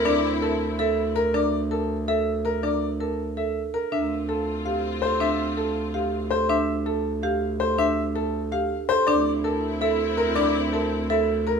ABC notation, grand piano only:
X:1
M:7/8
L:1/8
Q:1/4=163
K:Cmix
V:1 name="Grand piano"
d z A z e z B | d z A z e z B | d z A z e z B | e z A z f z c |
e z A z f z c | e z A z f z c | e z A z f z c | d z A z e z B |
d z A z e z B |]